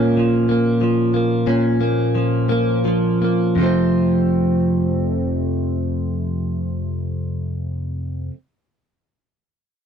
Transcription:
0.00 1.46 A#2 medium
0.00 0.17 F3 soft
0.00 0.48 A#3 soft
0.00 1.46 C#4 soft
0.17 0.81 F3 soft
0.49 1.13 A#3 soft
0.81 2.15 F3 soft
1.14 1.79 A#3 soft
1.47 3.57 A#2 medium
1.47 3.58 C#4 soft
1.81 2.48 A#3 soft
2.15 2.85 F3 soft
2.49 3.20 A#3 soft
2.85 3.59 F3 soft
3.22 3.61 A#3 soft
3.56 8.29 F2 medium
3.56 8.31 C3 soft
3.60 8.33 F3 medium
3.60 8.34 A3 medium
3.60 8.36 C4 medium

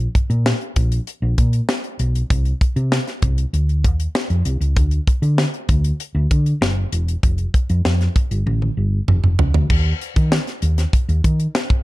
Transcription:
0.15 kick medium
0.15 closed hi-hat medium
0.30 0.52 A#2 medium
0.30 closed hi-hat soft
0.46 snare loud
0.61 closed hi-hat soft
0.76 0.98 A#1 medium
0.76 kick medium
0.76 closed hi-hat medium
0.92 closed hi-hat medium
1.07 closed hi-hat medium
1.22 1.33 A#1 medium
1.38 1.60 A#2 medium
1.38 kick medium
1.38 closed hi-hat medium
1.53 closed hi-hat soft
1.69 snare loud
1.84 closed hi-hat soft
1.99 2.21 B1 medium
1.99 closed hi-hat medium
2.15 closed hi-hat soft
2.30 2.52 C2 medium
2.30 kick medium
2.30 closed hi-hat medium
2.45 closed hi-hat soft
2.61 kick medium
2.61 closed hi-hat medium
2.76 2.98 C3 medium
2.76 closed hi-hat soft
2.92 snare medium
3.07 snare soft
3.07 closed hi-hat soft
3.22 3.44 C2 medium
3.22 kick medium
3.22 closed hi-hat medium
3.38 closed hi-hat medium
3.53 3.84 D2 medium
3.53 closed hi-hat medium
3.69 closed hi-hat soft
3.84 4.06 D#2 medium
3.84 kick medium
3.84 closed hi-hat medium
4.00 closed hi-hat soft
4.15 snare loud
4.30 4.41 F2 medium
4.30 closed hi-hat soft
4.45 4.57 C2 medium
4.45 closed hi-hat medium
4.61 4.76 C#2 medium
4.61 closed hi-hat medium
4.76 4.98 D2 loud
4.76 kick loud
4.76 closed hi-hat medium
4.91 closed hi-hat soft
5.07 kick medium
5.07 closed hi-hat medium
5.22 5.44 D3 medium
5.22 closed hi-hat soft
5.38 snare loud
5.54 closed hi-hat soft
5.69 5.91 D2 medium
5.69 kick medium
5.69 closed hi-hat medium
5.84 closed hi-hat medium
6.00 closed hi-hat medium
6.15 6.26 D2 medium
6.31 6.52 D3 medium
6.31 kick medium
6.31 closed hi-hat medium
6.46 closed hi-hat soft
6.61 6.83 F#1 medium
6.61 snare loud
6.92 7.14 E1 medium
6.92 closed hi-hat medium
7.08 closed hi-hat soft
7.23 7.45 F1 loud
7.23 kick medium
7.23 closed hi-hat medium
7.38 closed hi-hat soft
7.54 kick medium
7.54 closed hi-hat medium
7.69 7.80 F2 medium
7.69 closed hi-hat soft
7.85 8.07 F2 medium
7.85 snare medium
8.01 snare soft
8.01 closed hi-hat soft
8.16 kick medium
8.16 closed hi-hat medium
8.31 8.42 G1 medium
8.31 closed hi-hat soft
8.46 8.68 A1 medium
8.46 high tom soft
8.62 high tom soft
8.77 8.99 G1 medium
9.08 9.19 F1 loud
9.08 mid tom medium
9.24 9.35 F1 medium
9.24 mid tom medium
9.39 9.50 C#2 medium
9.39 floor tom loud
9.54 9.65 D2 medium
9.54 floor tom medium
9.70 9.91 D#2 loud
9.70 kick loud
9.70 crash medium
10.01 closed hi-hat medium
10.16 10.38 D#3 medium
10.16 kick medium
10.16 closed hi-hat soft
10.32 snare medium
10.47 snare soft
10.47 closed hi-hat soft
10.62 10.84 D#2 medium
10.62 closed hi-hat medium
10.78 snare soft
10.78 closed hi-hat soft
10.93 kick medium
10.93 closed hi-hat medium
11.09 11.19 D#2 medium
11.09 closed hi-hat soft
11.24 11.46 D#3 medium
11.24 kick medium
11.24 closed hi-hat medium
11.40 closed hi-hat soft
11.55 snare loud
11.70 kick medium
11.70 closed hi-hat soft

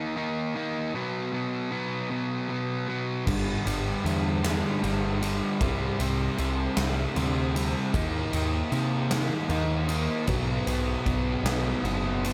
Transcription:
0.00 0.15 D#3 medium
0.00 0.16 A#3 medium
0.00 0.16 D#4 loud
0.16 0.54 D#3 medium
0.16 0.55 A#3 medium
0.16 0.56 D#4 medium
0.55 0.92 D#3 medium
0.55 0.92 A#3 medium
0.55 0.93 D#4 loud
0.94 1.32 B2 loud
0.94 1.32 F#3 loud
0.94 1.34 B3 loud
1.33 1.70 B2 medium
1.33 1.70 F#3 loud
1.33 1.71 B3 medium
1.71 2.09 B2 medium
1.71 2.10 F#3 medium
1.71 2.11 B3 loud
2.10 2.47 B2 medium
2.10 2.48 F#3 medium
2.10 2.49 B3 loud
2.49 2.86 B2 medium
2.49 2.87 F#3 medium
2.49 2.88 B3 medium
2.88 3.24 B2 medium
2.88 3.25 F#3 medium
2.88 3.25 B3 loud
3.27 3.55 G1 loud
3.27 3.64 G2 loud
3.27 3.64 D3 loud
3.27 3.66 G3 loud
3.27 kick loud
3.27 crash loud
3.65 3.94 G1 medium
3.65 4.04 G2 medium
3.65 4.04 D3 medium
3.65 4.05 G3 loud
3.65 ride medium
4.05 4.62 E2 medium
4.05 4.42 G2 loud
4.05 4.43 D3 loud
4.05 4.44 G3 loud
4.05 ride medium
4.43 4.81 G2 medium
4.43 4.82 D3 loud
4.43 4.83 G3 loud
4.43 snare loud
4.43 ride loud
4.82 5.40 G1 loud
4.82 5.20 G2 medium
4.82 5.21 D3 medium
4.82 5.22 G3 medium
4.82 ride medium
5.22 5.58 G2 medium
5.22 5.58 D3 medium
5.22 5.61 G3 loud
5.22 ride medium
5.61 5.89 C2 loud
5.61 5.99 C3 loud
5.61 6.00 G3 loud
5.61 6.00 C4 loud
5.61 kick loud
5.61 ride loud
5.99 6.28 C2 medium
5.99 6.36 C3 medium
5.99 6.38 G3 medium
5.99 6.38 C4 loud
5.99 ride medium
6.37 6.67 C2 medium
6.37 6.76 C3 loud
6.37 6.76 G3 loud
6.37 6.77 C4 loud
6.37 ride medium
6.77 7.05 C2 medium
6.77 7.15 C3 medium
6.77 7.15 G3 medium
6.77 7.16 C4 loud
6.77 snare loud
6.77 ride loud
7.16 7.73 D2 loud
7.16 7.54 C3 medium
7.16 7.54 G3 medium
7.16 7.55 C4 medium
7.16 ride loud
7.55 7.92 C3 medium
7.55 7.92 G3 loud
7.55 7.92 C4 medium
7.55 ride medium
7.94 8.22 D#2 loud
7.94 8.33 D#3 loud
7.94 8.33 A#3 loud
7.94 8.35 D#4 loud
7.94 kick loud
7.94 ride loud
8.33 8.62 D#2 medium
8.33 8.71 D#3 medium
8.33 8.72 A#3 medium
8.33 8.73 D#4 medium
8.33 ride medium
8.72 9.29 C3 medium
8.72 9.10 D#3 medium
8.72 9.11 A#3 loud
8.72 9.11 D#4 loud
8.72 ride medium
9.11 9.49 D#3 loud
9.11 9.50 A#3 loud
9.11 9.51 D#4 medium
9.11 snare loud
9.11 ride loud
9.49 10.07 D#2 loud
9.49 9.88 D#3 medium
9.49 9.89 A#3 medium
9.49 9.89 D#4 medium
9.49 ride medium
9.89 10.26 D#3 medium
9.89 10.26 A#3 loud
9.89 10.26 D#4 medium
9.89 ride medium
10.27 10.57 B1 loud
10.27 10.66 B2 medium
10.27 10.66 F#3 loud
10.27 10.67 B3 medium
10.27 kick loud
10.27 ride loud
10.66 10.95 B1 medium
10.66 11.05 B2 medium
10.66 11.06 F#3 medium
10.66 11.06 B3 loud
10.66 ride medium
11.06 11.35 B1 medium
11.06 11.45 B2 medium
11.06 11.45 F#3 medium
11.06 11.46 B3 loud
11.06 kick medium
11.06 ride medium
11.43 11.73 B1 loud
11.43 11.83 B2 medium
11.43 11.84 F#3 medium
11.43 11.85 B3 loud
11.43 snare loud
11.43 ride loud
11.83 12.33 F#1 loud
11.83 12.24 B2 medium
11.83 12.24 F#3 medium
11.83 12.24 B3 medium
11.83 ride medium
12.24 12.33 B2 medium
12.24 12.33 F#3 medium
12.24 12.33 B3 loud
12.24 ride medium

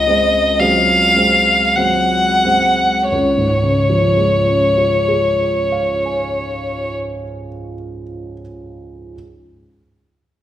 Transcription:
0.00 3.12 C#2 soft
0.00 0.61 D#5 medium
0.07 0.55 G#3 soft
0.07 0.56 C4 soft
0.59 1.12 F#3 soft
0.59 1.12 G#3 soft
0.59 1.12 C4 soft
0.59 1.77 F5 medium
1.16 1.73 G#3 soft
1.16 1.73 C4 soft
1.76 2.41 F#3 soft
1.76 2.41 G#3 soft
1.76 2.41 C4 soft
1.76 3.09 F#5 medium
2.45 3.08 G#3 soft
2.45 3.08 C4 soft
3.10 6.96 C#2 soft
3.10 6.94 C#5 soft
3.37 7.22 G#2 soft
3.63 7.47 C#3 soft
3.90 7.74 F3 soft
4.17 8.01 G#3 soft
4.47 8.32 C#4 soft
4.77 8.41 F4 soft
5.08 8.41 G#4 soft
5.40 8.41 C#5 soft
5.72 8.41 F5 soft
6.06 8.41 G#5 soft

